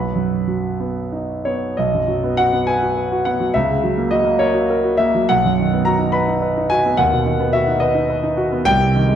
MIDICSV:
0, 0, Header, 1, 2, 480
1, 0, Start_track
1, 0, Key_signature, 5, "major"
1, 0, Tempo, 645856
1, 1312, Time_signature, 6, 3, 24, 8
1, 1312, Tempo, 598802
1, 2272, Tempo, 578592
1, 4672, Tempo, 559701
1, 7501, End_track
2, 0, Start_track
2, 0, Title_t, "Grand piano"
2, 0, Program_c, 0, 0
2, 0, Note_on_c, 0, 35, 44
2, 0, Note_on_c, 0, 71, 45
2, 0, Note_on_c, 0, 78, 41
2, 0, Note_on_c, 0, 83, 62
2, 41, Control_c, 0, 64, 127
2, 112, Note_on_c, 0, 42, 33
2, 353, Note_on_c, 0, 54, 33
2, 494, Note_off_c, 0, 42, 0
2, 594, Note_on_c, 0, 59, 35
2, 736, Note_off_c, 0, 54, 0
2, 835, Note_on_c, 0, 63, 32
2, 982, Note_off_c, 0, 59, 0
2, 1046, Note_off_c, 0, 71, 0
2, 1049, Note_off_c, 0, 78, 0
2, 1072, Note_off_c, 0, 83, 0
2, 1078, Note_on_c, 0, 73, 57
2, 1085, Note_on_c, 0, 59, 35
2, 1222, Note_off_c, 0, 63, 0
2, 1279, Note_off_c, 0, 35, 0
2, 1312, Note_off_c, 0, 73, 0
2, 1316, Note_off_c, 0, 59, 0
2, 1316, Note_on_c, 0, 75, 61
2, 1324, Control_c, 0, 64, 0
2, 1327, Note_on_c, 0, 35, 52
2, 1450, Note_on_c, 0, 42, 35
2, 1484, Control_c, 0, 64, 127
2, 1560, Note_on_c, 0, 54, 40
2, 1635, Note_off_c, 0, 42, 0
2, 1688, Note_on_c, 0, 59, 44
2, 1751, Note_off_c, 0, 54, 0
2, 1799, Note_off_c, 0, 75, 0
2, 1799, Note_on_c, 0, 78, 82
2, 1808, Note_on_c, 0, 66, 47
2, 1877, Note_off_c, 0, 59, 0
2, 1927, Note_on_c, 0, 59, 43
2, 1996, Note_off_c, 0, 66, 0
2, 2035, Note_on_c, 0, 80, 76
2, 2039, Note_off_c, 0, 78, 0
2, 2044, Note_on_c, 0, 71, 45
2, 2113, Note_off_c, 0, 59, 0
2, 2159, Note_on_c, 0, 66, 40
2, 2228, Note_off_c, 0, 71, 0
2, 2274, Note_on_c, 0, 71, 39
2, 2346, Note_off_c, 0, 66, 0
2, 2402, Note_on_c, 0, 66, 42
2, 2466, Note_off_c, 0, 71, 0
2, 2511, Note_off_c, 0, 80, 0
2, 2511, Note_on_c, 0, 78, 71
2, 2518, Note_on_c, 0, 59, 42
2, 2590, Note_off_c, 0, 66, 0
2, 2636, Note_on_c, 0, 54, 40
2, 2707, Note_off_c, 0, 59, 0
2, 2727, Note_off_c, 0, 35, 0
2, 2749, Note_on_c, 0, 76, 75
2, 2752, Note_off_c, 0, 78, 0
2, 2754, Note_off_c, 0, 54, 0
2, 2762, Note_on_c, 0, 37, 59
2, 2766, Control_c, 0, 64, 0
2, 2879, Control_c, 0, 64, 127
2, 2886, Note_on_c, 0, 49, 39
2, 2994, Note_on_c, 0, 54, 43
2, 3064, Note_off_c, 0, 49, 0
2, 3110, Note_on_c, 0, 58, 42
2, 3177, Note_off_c, 0, 54, 0
2, 3218, Note_off_c, 0, 76, 0
2, 3221, Note_on_c, 0, 75, 75
2, 3234, Note_on_c, 0, 66, 44
2, 3294, Note_off_c, 0, 58, 0
2, 3337, Note_on_c, 0, 58, 43
2, 3416, Note_off_c, 0, 66, 0
2, 3456, Note_on_c, 0, 73, 71
2, 3458, Note_off_c, 0, 75, 0
2, 3466, Note_on_c, 0, 70, 45
2, 3529, Note_off_c, 0, 58, 0
2, 3580, Note_on_c, 0, 66, 44
2, 3656, Note_off_c, 0, 70, 0
2, 3713, Note_on_c, 0, 70, 46
2, 3775, Note_off_c, 0, 66, 0
2, 3829, Note_on_c, 0, 66, 42
2, 3906, Note_off_c, 0, 70, 0
2, 3940, Note_on_c, 0, 76, 78
2, 3949, Note_off_c, 0, 73, 0
2, 3950, Note_on_c, 0, 58, 46
2, 4028, Note_off_c, 0, 66, 0
2, 4083, Note_on_c, 0, 54, 43
2, 4150, Note_off_c, 0, 58, 0
2, 4171, Note_off_c, 0, 37, 0
2, 4195, Note_off_c, 0, 76, 0
2, 4200, Note_on_c, 0, 78, 84
2, 4203, Note_off_c, 0, 54, 0
2, 4206, Note_on_c, 0, 35, 57
2, 4213, Control_c, 0, 64, 0
2, 4335, Note_on_c, 0, 42, 39
2, 4362, Control_c, 0, 64, 127
2, 4452, Note_on_c, 0, 51, 44
2, 4517, Note_off_c, 0, 42, 0
2, 4564, Note_on_c, 0, 59, 38
2, 4632, Note_off_c, 0, 51, 0
2, 4667, Note_on_c, 0, 82, 80
2, 4673, Note_off_c, 0, 78, 0
2, 4676, Note_on_c, 0, 66, 43
2, 4747, Note_off_c, 0, 59, 0
2, 4782, Note_on_c, 0, 63, 45
2, 4864, Note_off_c, 0, 66, 0
2, 4899, Note_on_c, 0, 83, 68
2, 4906, Note_on_c, 0, 71, 52
2, 4907, Note_off_c, 0, 82, 0
2, 4977, Note_off_c, 0, 63, 0
2, 5033, Note_on_c, 0, 63, 48
2, 5102, Note_off_c, 0, 71, 0
2, 5154, Note_on_c, 0, 71, 49
2, 5229, Note_off_c, 0, 63, 0
2, 5285, Note_on_c, 0, 63, 49
2, 5352, Note_off_c, 0, 71, 0
2, 5393, Note_on_c, 0, 80, 91
2, 5396, Note_off_c, 0, 83, 0
2, 5404, Note_on_c, 0, 66, 51
2, 5479, Note_off_c, 0, 63, 0
2, 5525, Note_on_c, 0, 59, 45
2, 5598, Note_off_c, 0, 66, 0
2, 5614, Note_off_c, 0, 35, 0
2, 5630, Note_on_c, 0, 78, 73
2, 5640, Note_off_c, 0, 80, 0
2, 5640, Note_on_c, 0, 39, 56
2, 5645, Note_off_c, 0, 59, 0
2, 5659, Control_c, 0, 64, 0
2, 5755, Note_on_c, 0, 47, 44
2, 5823, Control_c, 0, 64, 127
2, 5875, Note_on_c, 0, 51, 47
2, 5949, Note_off_c, 0, 47, 0
2, 5996, Note_on_c, 0, 59, 48
2, 6069, Note_off_c, 0, 51, 0
2, 6106, Note_on_c, 0, 76, 81
2, 6113, Note_off_c, 0, 78, 0
2, 6114, Note_on_c, 0, 66, 49
2, 6190, Note_off_c, 0, 59, 0
2, 6231, Note_on_c, 0, 63, 46
2, 6308, Note_off_c, 0, 66, 0
2, 6338, Note_on_c, 0, 75, 71
2, 6350, Note_on_c, 0, 71, 51
2, 6352, Note_off_c, 0, 76, 0
2, 6425, Note_off_c, 0, 63, 0
2, 6464, Note_on_c, 0, 63, 52
2, 6544, Note_off_c, 0, 71, 0
2, 6593, Note_on_c, 0, 71, 49
2, 6661, Note_off_c, 0, 63, 0
2, 6711, Note_on_c, 0, 63, 50
2, 6785, Note_off_c, 0, 71, 0
2, 6824, Note_off_c, 0, 75, 0
2, 6830, Note_on_c, 0, 66, 56
2, 6904, Note_off_c, 0, 63, 0
2, 6957, Note_on_c, 0, 59, 51
2, 7024, Note_off_c, 0, 66, 0
2, 7037, Note_off_c, 0, 39, 0
2, 7071, Note_on_c, 0, 79, 112
2, 7075, Note_off_c, 0, 59, 0
2, 7078, Note_on_c, 0, 36, 64
2, 7087, Control_c, 0, 64, 0
2, 7202, Note_on_c, 0, 48, 48
2, 7228, Control_c, 0, 64, 127
2, 7328, Note_on_c, 0, 51, 51
2, 7389, Note_off_c, 0, 48, 0
2, 7436, Note_on_c, 0, 56, 49
2, 7501, Note_off_c, 0, 36, 0
2, 7501, Note_off_c, 0, 51, 0
2, 7501, Note_off_c, 0, 56, 0
2, 7501, Note_off_c, 0, 79, 0
2, 7501, End_track
0, 0, End_of_file